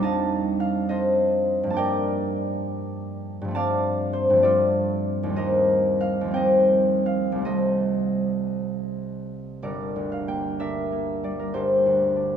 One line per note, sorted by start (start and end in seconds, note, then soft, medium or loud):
0.00 1.72 F2 medium
0.00 3.53 G3 medium
0.00 1.75 C4 medium
0.00 1.72 D4 medium
0.00 1.77 D#4 medium
0.00 0.89 C5 medium
0.00 1.77 D5 medium
0.00 0.88 D#5 medium
0.00 1.75 G5 medium
0.00 1.69 A5 loud
0.05 0.59 F5 medium
0.60 3.54 F5 loud
0.89 1.79 A4 medium
0.89 1.79 C5 medium
0.89 1.79 D#5 loud
1.63 3.40 G2 medium
1.63 3.43 F3 medium
1.70 3.54 A#3 medium
1.70 5.38 D4 medium
1.70 1.81 A5 medium
1.77 3.58 A#4 medium
1.77 3.55 D5 medium
1.77 3.57 G5 loud
3.42 4.29 G2 medium
3.42 4.32 F3 medium
3.48 4.35 A3 medium
3.48 4.39 C4 medium
3.55 4.42 D5 medium
3.55 5.99 F5 loud
3.55 5.39 A5 loud
4.13 5.36 C5 medium
4.30 5.32 G2 medium
4.30 5.25 F3 medium
4.37 5.36 A3 medium
4.37 5.32 C4 medium
4.43 7.50 F4 medium
4.43 5.40 A4 medium
4.43 5.39 D5 loud
5.23 6.20 D#2 medium
5.23 6.23 F3 medium
5.30 6.26 G3 medium
5.30 6.30 C4 medium
5.36 7.49 A#4 medium
5.36 6.34 C5 medium
5.36 6.34 D#5 loud
6.01 7.05 F5 loud
6.21 7.42 D#2 medium
6.21 7.44 F3 medium
6.28 7.34 G3 medium
6.28 7.40 C4 medium
6.34 7.45 C5 medium
6.34 7.44 D#5 medium
6.34 10.24 G5 loud
7.06 7.48 F5 medium
7.32 9.59 C2 medium
7.32 11.22 G3 medium
7.38 11.28 A3 soft
7.38 9.64 C4 medium
7.45 9.63 A4 medium
7.45 9.66 C5 medium
7.45 9.66 D#5 medium
9.63 11.53 G1 medium
9.63 10.59 A4 medium
9.63 10.60 A#4 medium
9.63 11.23 D5 medium
9.96 11.56 D2 medium
10.12 10.39 F5 medium
10.28 10.91 A#3 medium
10.28 12.37 G5 medium
10.59 12.15 D4 medium
10.59 11.54 A4 medium
10.59 11.38 A#4 medium
10.59 11.66 E5 loud
10.92 11.57 A#3 medium
11.24 12.37 G3 soft
11.24 12.37 D5 medium
11.39 11.65 A#4 medium
11.54 12.37 G1 medium
11.54 12.37 G4 medium
11.54 12.37 A4 medium
11.54 12.37 C5 medium
11.86 12.37 D2 soft
12.16 12.37 D4 medium